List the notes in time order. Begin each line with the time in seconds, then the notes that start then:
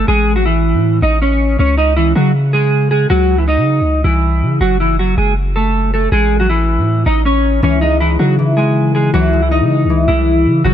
0.08 A1 G#3 G#4
0.36 F#3 F#4
0.45 E3 E4
0.74 A2
1.02 A1 D#4 D#5
1.22 C#4 C#5
1.59 C#2 C#4 C#5
1.77 D#4 D#5
1.96 E3 E4
2.15 C#3 F#3 F#4
2.53 G#3 G#4
2.91 G#3 G#4
3.10 C#2 F#3 F#4
3.38 E3 E4
3.48 D#4 D#5
3.57 C#3
3.81 C#2
4.04 C2 E3 E4
4.42 C#3
4.61 F#1 F#3 F#4
4.80 E3 E4
4.99 F#3 F#4
5.18 F#1 G#3 G#4
5.56 A3 A4
5.94 A3 A4
6.12 A1 G#3 G#4
6.40 F#3 F#4
6.49 E3 E4
6.78 A2
7.06 A1 D#4 D#5
7.25 C#4 C#5
7.63 C#2 E3 C#4 C#5
7.81 G#3 D#4 D#5
8.00 E3 D#4 E4
8.19 C#3 F#3 F#4
8.39 E3
8.57 G#3 G#4
8.95 G#3 G#4
9.14 C#2 E3 F#3 F#4
9.33 G#3
9.42 E3 E4
9.51 D#4 D#5
9.61 C#3
9.85 C#2
9.90 E3
10.08 C2 E3 G#3 E4
10.46 C#3
10.65 F#1 C#3 F#3 F#4